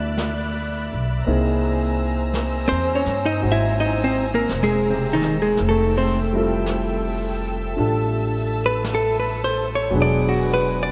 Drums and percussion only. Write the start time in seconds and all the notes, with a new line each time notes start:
0.18 brush sweep, snare, hi-hat pedal
1.26 brush sweep
2.34 brush sweep, snare, hi-hat pedal
3.06 snare
3.40 brush sweep
4.49 brush sweep, snare, hi-hat pedal
5.21 snare
5.57 brush sweep, snare
6.66 brush sweep, snare, hi-hat pedal
7.76 brush sweep
8.84 brush sweep, snare, hi-hat pedal
9.92 brush sweep